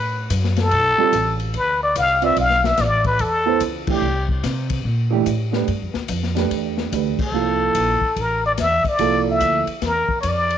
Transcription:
Already playing: upright bass A2, muted trumpet B4
0.30 upright bass F#2, kick, hi-hat pedal, ride
0.44 snare
0.56 muted trumpet A4, snare, ride
0.71 upright bass B1, kick, ride
0.98 upright piano G3 C4 F4 A4, muted upright bass stroke
1.12 upright bass A1, kick, hi-hat pedal, ride
1.40 ride
1.54 upright bass D2, muted trumpet B4, kick, ride
1.83 muted trumpet D5
1.95 upright bass C2, muted trumpet F5, kick, hi-hat pedal, ride
2.22 upright piano C4 F4 B4 D5, muted trumpet E5, ride
2.36 upright bass B1, muted trumpet F5, kick, ride
2.50 snare
2.64 muted trumpet E5, snare
2.77 upright bass A1, muted trumpet D5, kick, snare, hi-hat pedal, ride
3.04 muted trumpet B4, kick, ride
3.19 upright bass E2, muted trumpet A4, kick, ride
3.46 upright piano B3 E4 A4 C5
3.60 upright bass C#2, kick, hi-hat pedal, ride
3.87 upright piano E3 A3 D4 G4, kick, crash
3.91 muted trumpet G4
4.02 upright bass C2
4.29 kick
4.43 upright bass C3, kick, snare, hi-hat pedal, ride
4.70 kick, ride
4.84 upright bass A#2, kick
5.11 upright piano E3 A3 D4 G4
5.26 upright bass A2, kick, hi-hat pedal, ride
5.51 upright piano A3 D4 G4 B4, snare
5.68 upright bass G2, kick, ride
5.81 upright bass F2
5.94 upright bass D2, snare
6.08 upright bass F2, kick, hi-hat pedal, ride
6.23 snare
6.34 upright piano A3 D4 G4 B4, snare, ride
6.51 upright bass E2, kick, ride
6.78 snare
6.92 upright bass D2, upright piano A3 D4 G4 B4, kick, hi-hat pedal, ride
7.19 muted trumpet A4, muted upright bass stroke, kick, crash
7.32 upright bass C2, upright piano F3 A#3 E4 A4
7.74 upright bass A#1, kick, hi-hat pedal, ride
8.01 kick
8.16 upright bass A1, kick, ride
8.21 muted trumpet A#4
8.46 muted trumpet D5
8.58 upright bass E2, muted trumpet E5, kick, snare, hi-hat pedal, ride
8.84 muted upright bass stroke, kick, ride
8.88 muted trumpet D5
8.99 upright bass C2, upright piano F3 A#3 E4 A4, kick, ride
9.30 muted trumpet E5
9.40 upright bass D2, kick, hi-hat pedal, ride
9.66 muted upright bass stroke, ride
9.82 upright bass E2, kick, snare, ride
9.86 muted trumpet A#4
10.08 muted upright bass stroke, kick
10.21 upright bass F2, muted trumpet C#5, kick, hi-hat pedal, ride
10.28 muted trumpet D5
10.50 ride

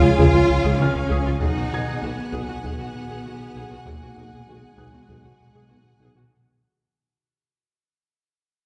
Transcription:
Already playing: analog synth pad F3 C#4 F4 G#4, cello section F4, french horn section G#4 C#5, violin section F5 G#5, grand piano A#6
0.03 double bass section C#2, analog synth bass C#3, viola section F4
0.18 double bass section C#2, tuba C#2, analog synth bass C#2, cello section F4, viola section G#4, taiko
0.33 double bass section C#2, analog synth bass C#2, viola section F4
0.50 analog synth bass C#2
0.64 analog synth bass C#2, double bass section C#2, viola section G#4
0.79 tuba C#2, double bass section C#2, analog synth bass C#3, cello section C#4, viola section F4, grand piano F6
0.95 analog synth bass C#2
1.10 tuba C#2, analog synth bass C#2, double bass section C#2, viola section G#4
1.25 analog synth bass C#2, double bass section C#2, viola section F4
1.40 double bass section B1, tuba B1, analog synth bass B2, analog synth pad D#3 D#4 F#4 G#4, cello section D#4, french horn section F#4 G#4, viola section G#4, violin section F#5 G#5, taiko
1.56 double bass section B1, analog synth bass B2, viola section F#4
1.71 double bass section B1, tuba B1, analog synth bass B2, viola section D#4, grand piano G#6
1.87 double bass section B1, analog synth bass B2, viola section G#4
2.02 double bass section B1, tuba B1, cello section B3, analog synth bass B3, viola section F#4
2.19 analog synth bass B3
2.33 double bass section B1, tuba B1, analog synth bass B2, viola section G#4, taiko
2.48 double bass section B1, analog synth bass B3, viola section F#4
2.63 tuba B1, double bass section B1, analog synth bass B2, cello section B3, viola section G#4, taiko
2.79 double bass section B1, analog synth bass B2, viola section F#4
2.95 analog synth bass B2
3.09 double bass section B1, analog synth bass B2, viola section G#4
3.25 double bass section B1, tuba B1, analog synth bass B3, viola section F#4
3.40 analog synth bass B2
3.55 double bass section B1, tuba B1, analog synth bass B2, viola section G#4
3.70 double bass section B1, analog synth bass B2, viola section F#4
3.85 double bass section B1, tuba B1, analog synth bass B2, cello section A#3, viola section G#4, taiko
4.01 double bass section B1, analog synth bass B2, viola section F#4
4.16 double bass section B1, tuba B1, analog synth bass B2, viola section D#4
4.32 double bass section B1, analog synth bass B2, viola section G#4
4.46 tuba B1, double bass section B1, cello section G#3, analog synth bass B3, viola section F#4
4.63 analog synth bass B3
4.77 double bass section B1, tuba B1, analog synth bass B2, viola section G#4, grand piano F#6, taiko
4.93 double bass section B1, analog synth bass B3, viola section F#4
5.08 double bass section B1, tuba B1, analog synth bass B2, viola section G#4, taiko
5.23 double bass section B1, analog synth bass B2, viola section F#4
5.40 analog synth bass B2
5.54 double bass section B1, analog synth bass B2, viola section G#4
5.69 tuba B1, double bass section B1, analog synth bass B3, viola section F#4
5.85 analog synth bass B2
6.00 tuba B1, double bass section B1, analog synth bass B2, viola section G#4
6.15 double bass section B1, analog synth bass B2, viola section F#4

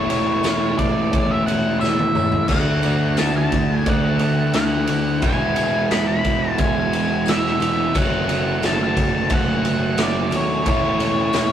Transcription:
Already playing: distorted electric guitar E3 A3 C#4 E4
0.07 picked electric bass E1, upright piano E4 A4 C#5, lead electric guitar C#5, ride, tambourine
0.43 picked electric bass E1, upright piano E4 A4 C#5, snare, ride, tambourine
0.79 picked electric bass E1, upright piano E4 A4 B4, lead electric guitar D5, kick, ride
1.11 picked electric bass E1, upright piano E4 A4 C#5, kick, ride, tambourine
1.31 lead electric guitar E5
1.45 upright piano E4 A4 C#5, lead electric guitar F#5, ride, tambourine
1.79 picked electric bass E1, upright piano E4 A4 C#5, lead electric guitar E5, tambourine
1.84 snare
1.99 high tom
2.14 picked electric bass E1, upright piano E4 A4 C#5, mid tom, tambourine
2.32 floor tom
2.48 picked electric bass D2, distorted electric guitar D3 A3 D4, upright piano F#4 A4 D5, lead electric guitar F#5, kick, crash, tambourine
2.53 distorted electric guitar F#4
2.81 picked electric bass D2, upright piano F#4 A4 D5, ride, tambourine
3.17 picked electric bass D2, upright piano F#4 A4 D5, lead electric guitar A5, snare, ride, tambourine
3.37 lead electric guitar A5
3.52 picked electric bass D2, upright piano F#4 A4 D5, kick, ride, tambourine
3.76 lead electric guitar G#5
3.86 picked electric bass D2, upright piano F#4 A4 D5, lead electric guitar F#5, kick, ride
4.19 picked electric bass D2, upright piano F#4 A4 D5, ride, tambourine
4.53 picked electric bass D2, upright piano F#4 A4 D5, lead electric guitar F#5, snare, ride, tambourine
4.87 picked electric bass D2, upright piano F#4 A4 D5, ride, tambourine
5.21 picked electric bass E1, distorted electric guitar E3 G#3, upright piano F#4 G#4 E5, lead electric guitar G#5, kick, ride, tambourine
5.25 distorted electric guitar B3 E4
5.54 picked electric bass E1, upright piano F#4 G#4 E5, ride, tambourine
5.89 picked electric bass E1, upright piano F#4 G#4 E5, lead electric guitar B5, snare, ride, tambourine
6.08 lead electric guitar B5
6.23 picked electric bass E1, upright piano F#4 G#4 F#5, kick, ride, tambourine
6.51 lead electric guitar A5
6.56 picked electric bass E1, upright piano F#4 G#4 E5, lead electric guitar G#5, kick, ride
6.92 upright piano F#4 G#4 E5, ride, tambourine
7.26 picked electric bass E1, upright piano F#4 G#4 E5, lead electric guitar E5, snare, ride, tambourine
7.47 snare
7.60 picked electric bass E1, upright piano F#4 G#4 E5, ride, tambourine
7.94 picked electric bass F#1, distorted electric guitar F#3 A3 C#4, upright piano F#4 A4 C#5, lead electric guitar F#5, kick, ride, tambourine
7.98 distorted electric guitar F#4
8.27 picked electric bass F#1, upright piano F#4 A4 C#5, ride, tambourine
8.61 picked electric bass F#1, upright piano F#4 A4 C#5, snare, ride, tambourine
8.66 lead electric guitar A5
8.83 lead electric guitar A5
8.95 picked electric bass F#1, upright piano F#4 A4 C#5, kick, ride, tambourine
9.28 picked electric bass F#1, upright piano F#4 A4 E5, kick, ride
9.34 lead electric guitar F#5
9.63 picked electric bass F#1, upright piano F#4 A4 B4, ride, tambourine
9.97 picked electric bass F#1, upright piano F#4 A4 C#5, snare, ride, tambourine
10.02 lead electric guitar D5
10.31 picked electric bass D#2, upright piano F#4 A4 C#5, ride, tambourine
10.36 lead electric guitar C#5
10.64 picked electric bass E1, distorted electric guitar E3 A3, upright piano E4 A4 C#5, kick, ride, tambourine
10.69 distorted electric guitar C#4 E4, lead electric guitar C#5
10.99 picked electric bass E1, upright piano E4 A4 C#5, ride, tambourine
11.33 picked electric bass E1, upright piano E4 A4 C#5, snare, ride, tambourine

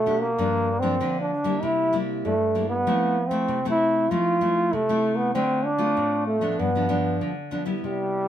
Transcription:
Already playing: nylon-string guitar B2, trombone A3
0.06 nylon-string guitar B3 D4 G4
0.21 trombone A#3
0.38 nylon-string guitar G2 F3 A#3 D4
0.80 nylon-string guitar F3 A#3 D4, trombone C4
1.00 nylon-string guitar D3 F3 A#3 D4
1.21 trombone D4
1.44 nylon-string guitar G3 A#3 E4
1.63 nylon-string guitar C3, trombone E4
1.93 nylon-string guitar G3 A#3 E4
2.25 nylon-string guitar G2, trombone A3
2.55 nylon-string guitar G3 A#3 E4
2.69 trombone B3
2.87 nylon-string guitar F3 A3 C4 E4
3.28 nylon-string guitar A3 C4 E4, trombone C4
3.48 nylon-string guitar C3
3.65 nylon-string guitar A3 C4 E4
3.70 trombone E4
4.11 nylon-string guitar F3 A3 C4 E4, trombone F4
4.41 nylon-string guitar A3 C4 E4
4.73 nylon-string guitar C3, trombone A3
4.89 nylon-string guitar A3 C4 E4
5.17 trombone B3
5.35 nylon-string guitar D3 A3 C4 F4, trombone C4
5.65 trombone D4
5.78 nylon-string guitar A3 C4 F4
5.97 nylon-string guitar A2
6.27 trombone A3
6.41 nylon-string guitar F3 B3 D4
6.59 nylon-string guitar G2, trombone B3
6.75 nylon-string guitar F3 B3 D4
6.89 nylon-string guitar F3 B3 D4
7.21 nylon-string guitar D3
7.51 nylon-string guitar F3 B3 D4
7.66 nylon-string guitar G3 B3 E4
7.84 nylon-string guitar C3, trombone G3

